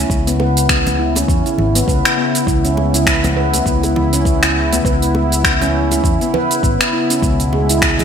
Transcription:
Already playing: C#3 B3 E4
0.10 C#2, kick, shaker
0.27 B3, open hi-hat, shaker
0.39 B4, high bongo, high conga
0.57 open hi-hat, shaker
0.69 B3, finger snap, kick, shaker
0.86 open hi-hat, high conga, low conga, shaker
0.99 E4
1.16 C#4, open hi-hat, high bongo, high conga, shaker
1.28 E2, kick, shaker
1.46 E4, open hi-hat, shaker
1.58 G#1, low conga
1.75 B3, open hi-hat, shaker
1.88 C#2 B4, kick, shaker
2.05 finger snap, open hi-hat, shaker
2.18 B3
2.35 open hi-hat, shaker
2.47 C#2 E4, kick, shaker
2.65 C#4, open hi-hat, shaker
2.77 high bongo, high conga
2.94 E4, open hi-hat, shaker
3.06 finger snap, kick, shaker
3.24 B3, open hi-hat, high conga, low conga, shaker
3.36 B4
3.54 open hi-hat, high bongo, high conga, shaker
3.66 C#2 B3, kick, shaker
3.83 open hi-hat, high bongo, shaker
3.96 E4, low conga
4.13 C#4, open hi-hat, high bongo, shaker
4.25 kick, shaker
4.43 E4, finger snap, open hi-hat, shaker
4.73 B3, open hi-hat, high conga, shaker
4.85 C#2 B4, kick, shaker
5.02 open hi-hat, shaker
5.15 B3, high bongo, high conga
5.32 open hi-hat, shaker
5.44 E4, finger snap, kick, shaker
5.61 C#4, open hi-hat, high conga, low conga, shaker
5.91 E4, open hi-hat, high bongo, high conga, shaker
6.04 E2, kick, shaker
6.21 B3, open hi-hat, shaker
6.34 B4, low conga
6.51 open hi-hat, shaker
6.63 G#1 B3, kick, shaker
6.81 finger snap, open hi-hat, shaker
6.93 E4
7.10 C#4, open hi-hat, shaker
7.22 C#2 B2 G#3 B3, kick, shaker
7.40 open hi-hat, shaker
7.53 G#4, high bongo, high conga
7.69 E4, open hi-hat, shaker
7.82 finger snap, kick, shaker
7.99 G#4, open hi-hat, high conga, low conga, shaker

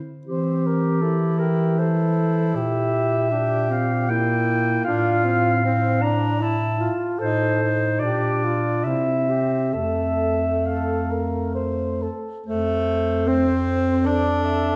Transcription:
0.26 E3 C4 G4 C5
0.67 A#4
1.02 E4 A4
1.38 G4 A#4
1.79 A4 C5
2.54 A#2 G4 E5
3.31 D4 G4
3.70 C4 F5
4.09 A#3 E4 G5
4.85 A2 D4 F4 F5
5.25 C4
5.64 C4
6.02 D4 A#5
6.40 E4 A5
6.80 F4
7.19 A2 D#4 A4 C5
7.63 D#4
7.99 A#2 D4 G4 D5
8.45 F4
8.84 C3 C4 E4 E5
9.29 G4
9.74 F2 A3 A4 E5
10.66 A4 F5
11.11 A#4
11.55 C5
12.03 A4
12.46 F2 A3 C5
13.27 C4 C5
14.03 D4 A4 D5
14.45 E5

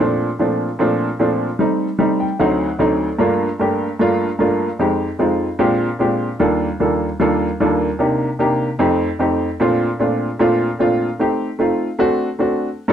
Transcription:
0.00 A#2 F3 A3 C4 D4
0.39 A#2 F3 A3 C4 D4
0.79 A#2 F3 A3 C4 D4
1.19 A#2 F3 A3 C4 D4
1.59 G3 A3 C4 D#4
1.99 G3 A3 C4 D#4
2.20 G5
2.39 D2 F#3 A3 C4 D#4 F#5
2.79 D2 F#3 A3 C4 D#4 D5
3.19 G2 A3 A#3 D4 F4
3.60 G2 A3 A#3 D4 G4
3.99 G2 A3 A#3 D4 F4
4.39 G2 A3 A#3 D4 F4
4.79 F2 G#3 C4 D#4 G4
5.19 F2 G#3 C4 D#4 F4
5.59 A#2 G#3 C4 D4 F4 G4
5.99 A#2 G#3 C4 D4 F4 G4
6.40 D#2 G3 A#3 D4 F4 A4
6.80 D#2 G3 A#3 D4 F4 A4
7.20 D#2 G3 A#3 D4 F4 A4
7.60 D#2 G3 A#3 D4 F4 A4
7.99 C3 A#3 D4 D#4 G4
8.39 C3 A#3 D4 D#4 G4
8.79 F2 A3 C4 D#4 G4
9.19 F2 A3 C4 D#4 G4
9.60 A#2 A3 C4 D4 F4
9.99 A#2 A3 C4 D4 F4
10.39 A#2 A3 C4 D4 F4
10.79 A#2 A3 C4 D4 F4
11.19 A3 C4 D#4 G4
11.59 A3 C4 D#4 F4
11.99 A3 C4 D4 F#4
12.39 A3 C4 D4 F#4
12.88 G2 A#3 D4 F4 A4

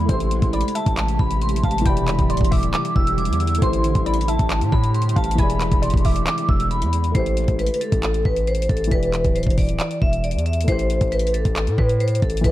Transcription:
Already playing: E3 E4 G#4 D5
0.06 A1 C3 A3 E4 G4 C5 C6, kick, closed hi-hat
0.11 G4 C5
0.20 closed hi-hat
0.31 closed hi-hat
0.42 A1, kick, closed hi-hat
0.53 D5 B5, closed hi-hat
0.61 closed hi-hat
0.68 closed hi-hat
0.75 E5 A5, closed hi-hat
0.86 A1, kick, closed hi-hat
0.97 clap, closed hi-hat
1.08 closed hi-hat
1.19 A1 B5, kick
1.31 closed hi-hat
1.42 C6, closed hi-hat
1.49 closed hi-hat
1.56 closed hi-hat
1.64 A1 F5 A5, kick, closed hi-hat
1.71 closed hi-hat
1.78 E3, closed hi-hat
1.84 E1 D3 G3 E4 G4 G5 B5, kick, closed hi-hat
1.89 D5
1.97 closed hi-hat
2.08 clap, closed hi-hat
2.19 D1, kick, closed hi-hat
2.30 D5 C6, closed hi-hat
2.37 E1, kick, closed hi-hat
2.44 closed hi-hat
2.51 E5 D6, kick, open hi-hat
2.63 D1, closed hi-hat
2.74 D6, clap, closed hi-hat
2.85 closed hi-hat
2.96 E1 E6, kick
3.07 closed hi-hat
3.18 D6, closed hi-hat
3.25 E2, closed hi-hat
3.33 closed hi-hat
3.40 E6, closed hi-hat
3.47 closed hi-hat
3.55 A3, closed hi-hat
3.61 A1 C3 A3 E4 G4 C5 C6, kick, closed hi-hat
3.66 C5
3.73 closed hi-hat
3.84 closed hi-hat
3.95 A1, kick, closed hi-hat
4.06 D5 B5, closed hi-hat
4.14 closed hi-hat
4.21 closed hi-hat
4.28 E5 A5, closed hi-hat
4.39 A1, kick, closed hi-hat
4.50 clap, closed hi-hat
4.61 A2, closed hi-hat
4.72 A2 B5, kick
4.84 closed hi-hat
4.94 C6, closed hi-hat
5.02 closed hi-hat
5.09 closed hi-hat
5.16 A1 F5 A5, kick, closed hi-hat
5.24 closed hi-hat
5.31 closed hi-hat
5.35 E1 D3 E3 G#3 E4 G#5 B5, kick, closed hi-hat
5.40 G#4 D5
5.50 closed hi-hat
5.60 clap, closed hi-hat
5.72 E1, kick, closed hi-hat
5.82 D5 C6, closed hi-hat
5.90 E1, kick, closed hi-hat
5.97 closed hi-hat
6.05 E5 D6, kick, open hi-hat
6.16 closed hi-hat
6.27 D6, clap, closed hi-hat
6.38 closed hi-hat
6.49 E1 E6, kick
6.60 closed hi-hat
6.71 B5, closed hi-hat
6.82 E2, closed hi-hat
6.93 closed hi-hat
7.04 closed hi-hat
7.12 A1 A3 E4 C5, kick, closed hi-hat
7.17 G4 C5
7.26 closed hi-hat
7.37 closed hi-hat
7.48 A1, kick, closed hi-hat
7.59 B4, closed hi-hat
7.66 closed hi-hat
7.74 closed hi-hat
7.81 A4, closed hi-hat
7.92 A1, kick, closed hi-hat
8.03 clap, closed hi-hat
8.14 closed hi-hat
8.25 A1 B4, kick
8.36 closed hi-hat
8.47 C5, closed hi-hat
8.55 closed hi-hat
8.62 closed hi-hat
8.69 A1 A4, kick, closed hi-hat
8.77 closed hi-hat
8.84 E3, closed hi-hat
8.90 E1 E4 G4 B4, kick, closed hi-hat
8.95 D5
9.03 closed hi-hat
9.13 clap, closed hi-hat
9.24 D1, kick, closed hi-hat
9.35 C5, closed hi-hat
9.43 E1, kick, closed hi-hat
9.50 closed hi-hat
9.58 D5, kick, open hi-hat
9.69 D1, closed hi-hat
9.79 D5, clap, closed hi-hat
9.91 closed hi-hat
10.02 E1 E5, kick
10.13 closed hi-hat
10.24 D5, closed hi-hat
10.31 E2, closed hi-hat
10.39 closed hi-hat
10.46 E5, closed hi-hat
10.53 closed hi-hat
10.61 A3, closed hi-hat
10.67 A1 E4 G4 C5, kick, closed hi-hat
10.72 C5
10.79 closed hi-hat
10.90 closed hi-hat
11.01 A1, kick, closed hi-hat
11.12 B4, closed hi-hat
11.19 closed hi-hat
11.27 closed hi-hat
11.34 A4, closed hi-hat
11.45 A1, kick, closed hi-hat
11.56 clap, closed hi-hat
11.67 A2, closed hi-hat
11.78 A2 B4, kick
11.89 closed hi-hat
12.00 C5, closed hi-hat
12.08 closed hi-hat
12.15 closed hi-hat
12.22 A1 A4, kick, closed hi-hat
12.30 closed hi-hat
12.37 closed hi-hat
12.41 E1 E3 E4 B4, kick, closed hi-hat
12.46 G#4

